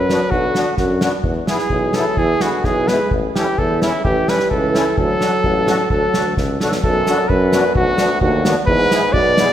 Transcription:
Already playing: tuba F#2, euphonium F#3, trumpet B4
0.10 accordion B3 D4 F#4, snare
0.31 tuba B1, euphonium D3, trumpet F#4, kick
0.55 accordion B3 D4 F#4, snare
0.77 tuba F#2, euphonium D3, trumpet F#4, kick, snare
1.01 accordion B3 D4 F#4, snare
1.24 tuba E2, kick
1.47 euphonium E3, accordion B3 E4 G#4, trumpet G#4, snare
1.59 snare
1.70 tuba B1, kick
1.93 euphonium F#3, accordion B3 E4 G#4, trumpet A4, snare
2.17 tuba E2, euphonium E3, trumpet G#4, kick
2.40 euphonium D3, accordion B3 E4 G#4, trumpet F#4, snare
2.64 tuba B1, euphonium E3, trumpet G#4, kick, snare
2.88 euphonium G#3, accordion B3 E4 G#4, trumpet B4, snare
3.11 tuba A1, kick
3.35 euphonium E3, accordion C#4 E4 A4, trumpet G4, snare
3.58 tuba E2, euphonium E3, trumpet A4, kick
3.81 euphonium C#3, accordion C#4 E4 A4, trumpet E4, snare
4.05 tuba A1, euphonium E3, trumpet G4, kick
4.28 euphonium G3, accordion C#4 E4 A4, trumpet B4, snare
4.39 snare
4.50 tuba C#2, euphonium E3, trumpet A4, kick
4.73 accordion C#4 E4 A4, snare
4.98 tuba D2, euphonium F#3, trumpet A4, kick
5.21 accordion D4 F#4 A4, snare
5.44 tuba A1, kick
5.67 accordion D4 F#4 A4, snare
5.90 tuba D2, euphonium F#3, trumpet A4, kick
6.14 tuba D2, accordion D4 F#4 A4, snare
6.37 tuba C#2, kick, snare
6.60 tuba B1, accordion D4 F#4 A4, snare
6.72 snare
6.84 tuba B1, euphonium F#2, trumpet A4, kick
7.07 accordion B3 D4 F#4, snare, hi-hat pedal
7.28 euphonium F#2, tuba F#2, trumpet B4, kick
7.53 accordion B3 D4 F#4, snare, hi-hat pedal
7.75 tuba B1, euphonium D2, trumpet F#4, kick
7.98 accordion B3 D4 F#4, snare, hi-hat pedal
8.20 euphonium D2, tuba D#2, trumpet F#4, kick
8.45 accordion B3 D4 F#4, snare, hi-hat pedal
8.66 tuba E2, euphonium G#2, trumpet B4, kick
8.91 accordion B3 E4 G#4, snare, hi-hat pedal
9.13 tuba B1, euphonium B2, trumpet D5, kick
9.37 accordion B3 E4 G#4, snare, hi-hat pedal

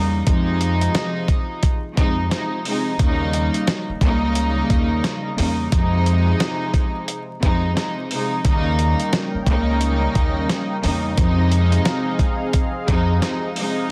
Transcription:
Already playing: upright bass E2, string section C#3 G3 A#3 D#4
0.25 upright bass F2, string section C3 F3 G#3 D#4, kick, closed hi-hat
0.61 closed hi-hat
0.81 closed hi-hat
0.95 snare, closed hi-hat
1.28 kick, closed hi-hat
1.63 kick, closed hi-hat
1.96 upright bass F2, string section C3 F3 G#3 D#4, kick, closed hi-hat
2.28 string section C3 F3 G#3 D#4, snare, closed hi-hat
2.65 string section C3 F3 G#3 D#4, open hi-hat
2.99 upright bass D#2, string section C#3 G3 A#3 D#4, kick, closed hi-hat
3.33 closed hi-hat
3.54 closed hi-hat
3.67 snare, closed hi-hat
3.89 muted upright bass stroke
4.01 upright bass C#2, string section C#3 G3 A#3 D#4, kick, closed hi-hat
4.35 closed hi-hat
4.70 upright bass D#2, kick, closed hi-hat
5.04 snare, closed hi-hat
5.36 upright bass E2, string section C#3 G3 A#3 D#4, open hi-hat
5.70 upright bass F2, string section C3 F3 G#3 D#4, kick, closed hi-hat
6.06 closed hi-hat
6.40 snare, closed hi-hat
6.74 kick, closed hi-hat
7.08 closed hi-hat
7.41 upright bass F2, string section C3 F3 G#3 D#4, kick, closed hi-hat
7.74 string section C3 F3 G#3 D#4, snare, closed hi-hat
8.11 string section C3 F3 G#3 D#4, open hi-hat
8.44 upright bass D#2, string section C#3 G3 A#3 D#4, analog synth pad C#4 A#4 D#5 G5, kick, closed hi-hat
8.79 closed hi-hat
9.00 closed hi-hat
9.13 snare, closed hi-hat
9.34 muted upright bass stroke
9.46 upright bass C#2, string section C#3 G3 A#3 D#4, kick, closed hi-hat
9.81 closed hi-hat
10.15 upright bass D#2, kick, closed hi-hat
10.50 snare, closed hi-hat
10.81 upright bass E2, string section C#3 G3 A#3 D#4, open hi-hat
11.16 upright bass F2, string section C3 F3 G#3 D#4, analog synth pad C4 G#4 F5, kick, closed hi-hat
11.51 closed hi-hat
11.72 closed hi-hat
11.85 snare, closed hi-hat
12.19 kick, closed hi-hat
12.53 kick, closed hi-hat
12.87 upright bass F2, string section C3 F3 G#3 D#4, kick, closed hi-hat
13.19 string section C3 F3 G#3 D#4, snare, closed hi-hat
13.56 string section C3 F3 G#3 D#4, open hi-hat

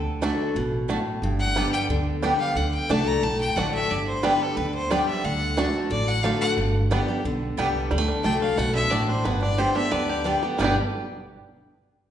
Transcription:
Already playing: upright bass D2, steel-string acoustic guitar D3
0.21 steel-string acoustic guitar D3 A3 D4 F#4, mandolin A3 F#4 D5 A5, five-string banjo A3 D4
0.55 upright bass A1, steel-string acoustic guitar B2
0.88 steel-string acoustic guitar A2, mandolin A3 F#4 D5 A5, five-string banjo A3 D4
1.22 upright bass G1, steel-string acoustic guitar G2
1.40 fiddle F#5
1.55 steel-string acoustic guitar D3 G3 B3 G4, five-string banjo G3 B3 D4, mandolin B3 G4 D5 G5
1.73 fiddle G5
1.89 upright bass D2, steel-string acoustic guitar D3
2.22 steel-string acoustic guitar D3 G3 B3 G4, five-string banjo G3 B3 D4, mandolin B3 G4 D5 G5
2.39 fiddle F5
2.56 upright bass D2, steel-string acoustic guitar D3, fiddle F#5
2.75 fiddle G5
2.89 upright bass C2, steel-string acoustic guitar D3 A3 D4 F#4, mandolin A3 F#4 D5 A5, five-string banjo A3 D4, fiddle A5
3.07 fiddle A#5
3.23 upright bass B1, steel-string acoustic guitar A2, fiddle A5
3.41 fiddle G5
3.56 upright bass A1, steel-string acoustic guitar D3 A3 D4 F#4, mandolin A3 F#4 D5 A5, five-string banjo A3 D4, fiddle F#5
3.74 fiddle E5
3.90 upright bass G1, steel-string acoustic guitar G2, fiddle D5
4.07 fiddle C5
4.23 steel-string acoustic guitar D3 G3 B3 G4, five-string banjo G3 B3 D4, mandolin B3 G4 D5 G5, fiddle B4
4.42 fiddle A4
4.57 upright bass D2, steel-string acoustic guitar D3, fiddle B4
4.75 fiddle C5
4.90 steel-string acoustic guitar D3 G3 B3 G4, five-string banjo G3 B3 D4, mandolin B3 G4 D5 G5, fiddle D5
5.08 fiddle E5
5.24 upright bass D2, steel-string acoustic guitar D3, fiddle F#5
5.57 steel-string acoustic guitar D3 A3 D4 F#4, mandolin A3 F#4 D5 A5, five-string banjo A3 D4
5.90 upright bass A1, steel-string acoustic guitar A2, fiddle D5
6.08 fiddle F#5
6.23 steel-string acoustic guitar D3 A3 D4 F#4, mandolin A3 F#4 D5 A5, five-string banjo A3 D4, fiddle F5
6.41 fiddle F#5
6.57 upright bass G1, steel-string acoustic guitar G2
6.91 steel-string acoustic guitar D3 G3 B3 G4, five-string banjo G3 B3 D4, mandolin B3 G4 D5 G5
7.08 steel-string acoustic guitar B3 G4
7.24 upright bass B1, steel-string acoustic guitar D3
7.57 upright bass C2, steel-string acoustic guitar D3 G3 B3 G4, five-string banjo G3 B3 D4, mandolin B3 G4 D5 G5
7.91 upright bass D2, steel-string acoustic guitar D3, five-string banjo G3
7.98 five-string banjo A3
8.08 five-string banjo D4
8.23 upright bass C2, steel-string acoustic guitar D3 A3 D4 F#4, mandolin A3 F#4 D5 A5, five-string banjo A3, fiddle G5
8.41 five-string banjo D4, fiddle F5
8.58 upright bass B1, steel-string acoustic guitar B2, five-string banjo A3, fiddle F#5
8.75 five-string banjo D3, fiddle E5
8.90 upright bass A1, steel-string acoustic guitar A2, mandolin A3 F#4 D5 A5, five-string banjo D4, fiddle D5
9.08 five-string banjo D4, fiddle C5
9.24 upright bass G1, steel-string acoustic guitar G2, five-string banjo B3, fiddle B4
9.42 five-string banjo D4, fiddle D5
9.58 steel-string acoustic guitar D3 G3 B3 G4, mandolin B3 G4 D5 G5, five-string banjo G4, fiddle C5
9.75 steel-string acoustic guitar B3 G4, five-string banjo D4, fiddle E5
9.91 upright bass D2, steel-string acoustic guitar D3, five-string banjo B3, fiddle D5
10.09 five-string banjo G4
10.24 steel-string acoustic guitar D3 G3 B3 G4, mandolin B3 G4 D5 G5, five-string banjo D4
10.43 five-string banjo B3, steel-string acoustic guitar B3 G4
10.58 upright bass G1, steel-string acoustic guitar G2 B2 D3 G3 B3 G4, five-string banjo G3 B3, mandolin B3 G4 D5 G5, fiddle D5
10.63 five-string banjo D4 G4

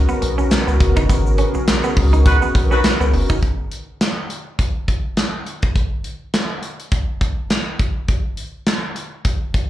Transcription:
Already playing: analog synth pad C#3 B3 F#4 A#4, analog polysynth B3 C#4 F#4 A#4
0.09 clean electric guitar B3, shaker
0.22 analog synth bass B1, muted clean electric guitar stroke, closed hi-hat
0.38 clean electric guitar C#4, shaker
0.51 snare, clap, closed hi-hat, shaker
0.67 analog synth bass C#2, clean electric guitar B3, shaker
0.80 analog synth bass F#1, muted clean electric guitar stroke, kick, closed hi-hat
0.96 analog synth bass G1, clean electric guitar D#4, kick, shaker
1.09 analog synth bass G#1, clean electric guitar B3, analog synth pad G#4, kick, closed hi-hat, shaker
1.26 shaker
1.38 clean electric guitar C#4, closed hi-hat
1.54 analog synth bass B1, muted clean electric guitar stroke, shaker
1.68 snare, clap, closed hi-hat, shaker
1.84 clean electric guitar B3, shaker
1.97 analog synth bass C#2, muted clean electric guitar stroke, kick, open hi-hat
2.13 clean electric guitar D#4, closed hi-hat, shaker
2.26 horn section B3 D#4 F#4 B4, kick, closed hi-hat, shaker
2.42 clean electric guitar B3, shaker
2.55 analog synth bass B1, muted clean electric guitar stroke, kick, closed hi-hat
2.71 horn section B3 D#4 F#4 B4, clean electric guitar C#4, shaker
2.84 snare, clap, closed hi-hat, shaker
3.00 analog synth bass C#2, clean electric guitar B3, shaker
3.13 analog synth bass F#1, muted clean electric guitar stroke, open hi-hat
3.29 analog synth bass G1, clean electric guitar D#4, kick, shaker
3.43 kick, closed hi-hat
3.72 closed hi-hat
4.01 snare, clap, closed hi-hat
4.30 closed hi-hat
4.59 kick, closed hi-hat
4.88 kick, closed hi-hat
5.17 snare, clap, closed hi-hat
5.47 closed hi-hat
5.62 kick, closed hi-hat
5.76 kick, closed hi-hat
6.04 closed hi-hat
6.34 snare, clap, closed hi-hat
6.63 closed hi-hat
6.80 closed hi-hat
6.92 kick, closed hi-hat
7.21 kick, closed hi-hat
7.50 snare, clap, closed hi-hat
7.79 kick, closed hi-hat
8.08 kick, closed hi-hat
8.37 closed hi-hat
8.67 snare, clap, closed hi-hat
8.96 closed hi-hat
9.25 kick, closed hi-hat
9.54 kick, closed hi-hat

